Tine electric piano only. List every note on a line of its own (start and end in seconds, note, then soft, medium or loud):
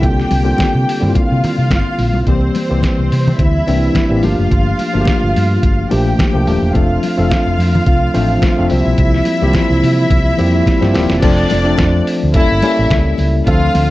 0.01 0.36 D3 medium
0.01 0.36 G3 medium
0.01 0.36 A#3 medium
0.01 0.36 C4 medium
0.01 0.36 F4 medium
0.43 0.88 D3 medium
0.43 0.89 G3 medium
0.43 0.89 A#3 medium
0.43 0.89 C4 medium
0.43 0.89 F4 medium
1.00 1.90 D3 medium
1.00 1.90 G3 medium
1.00 1.90 A#3 medium
1.00 1.91 C4 medium
1.00 1.08 E4 medium
1.09 1.94 F4 medium
2.27 2.61 E3 medium
2.27 2.61 G3 medium
2.27 2.61 A#3 medium
2.27 2.61 C4 medium
2.27 2.62 G4 medium
2.69 3.47 E3 medium
2.69 3.48 G3 medium
2.69 3.48 A#3 medium
2.69 3.48 C4 medium
2.69 3.48 G4 medium
3.67 4.01 E3 medium
3.67 4.01 G3 medium
3.67 4.01 A#3 medium
3.67 4.01 C4 medium
3.67 4.02 D4 medium
4.09 4.20 E3 medium
4.09 4.20 G3 medium
4.09 4.20 A#3 medium
4.09 4.21 C4 medium
4.09 4.21 G4 medium
4.23 4.79 F3 medium
4.23 4.79 A3 medium
4.23 4.79 A#3 medium
4.23 4.80 D4 medium
4.23 4.80 G4 medium
4.93 5.72 F3 medium
4.93 5.72 A3 medium
4.93 5.72 A#3 medium
4.93 5.72 D4 medium
4.93 5.00 F#4 medium
5.01 5.76 G4 loud
5.91 6.25 F3 medium
5.91 6.25 A3 medium
5.91 6.25 A#3 medium
5.91 6.25 D4 medium
5.91 6.25 G4 medium
6.33 6.44 F3 medium
6.33 6.45 A3 medium
6.33 6.45 A#3 medium
6.33 6.45 D4 medium
6.33 6.45 G4 medium
6.46 6.70 F3 medium
6.46 6.70 A3 medium
6.46 6.70 A#3 medium
6.46 6.70 D4 medium
6.46 6.70 G4 medium
6.73 7.08 F3 medium
6.73 7.09 A3 medium
6.73 7.09 C4 medium
6.73 7.09 D4 medium
6.73 7.09 A4 medium
7.17 7.96 F3 medium
7.17 7.96 A3 medium
7.17 7.96 C4 medium
7.17 7.96 D4 medium
7.17 7.97 A4 loud
8.14 8.49 F3 medium
8.14 8.49 A3 medium
8.14 8.49 C4 medium
8.14 8.49 D4 medium
8.14 8.49 C5 loud
8.57 8.68 F3 medium
8.57 8.68 A3 medium
8.57 8.69 C4 medium
8.57 8.69 D4 medium
8.57 8.69 A4 medium
8.71 9.27 F3 medium
8.71 9.27 G3 medium
8.71 9.27 A#3 medium
8.71 9.27 C4 medium
8.71 8.79 F4 medium
8.78 9.31 G4 medium
9.41 9.48 E3 medium
9.41 10.20 G3 medium
9.41 10.20 A#3 medium
9.41 10.20 C4 medium
9.41 10.21 G4 loud
9.47 10.23 F3 medium
10.38 10.72 F3 medium
10.38 10.73 G3 medium
10.38 10.73 A#3 medium
10.38 10.73 C4 medium
10.38 10.73 G4 loud
10.81 10.92 F3 medium
10.81 10.92 G3 medium
10.81 10.93 A#3 medium
10.81 10.93 C4 medium
10.81 10.93 G4 medium
10.94 11.17 F3 medium
10.94 11.18 G3 medium
10.94 11.17 A#3 medium
10.94 11.18 C4 medium
10.94 11.18 G4 medium
11.22 11.56 F3 medium
11.22 11.57 A3 medium
11.22 11.57 C4 medium
11.22 11.57 D4 medium
11.22 11.58 A4 medium
11.64 12.34 F3 medium
11.64 12.35 A3 medium
11.64 12.35 C4 medium
11.64 12.35 D4 medium
11.64 12.35 A4 medium
12.35 12.58 G3 medium
12.35 12.58 A#3 medium
12.35 12.58 C#4 medium
12.35 12.58 E4 medium
12.35 12.58 A4 medium
12.63 13.31 G3 loud
12.63 13.31 A#3 medium
12.63 13.31 C#4 medium
12.63 13.31 E4 loud
12.63 13.32 A4 medium
13.47 13.81 F3 loud
13.47 13.81 A3 medium
13.47 13.81 C4 medium
13.47 13.81 D4 medium
13.47 13.81 A4 loud